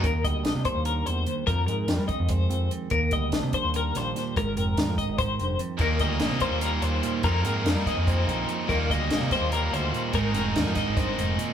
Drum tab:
HH |xxxxxxx|xxxxxxx|xxxxxxx|xxxxxxx|
SD |--o----|--o----|--o--oo|--o----|
BD |oo-o---|o--oo--|oo-o---|o--oo--|

HH |xxxxxxx|xxxxxxx|xxxxxxx|xxxxxxx|
SD |--o----|--o----|--oo---|-ooo---|
BD |oo-o---|o--oo--|oo-o---|o--oo--|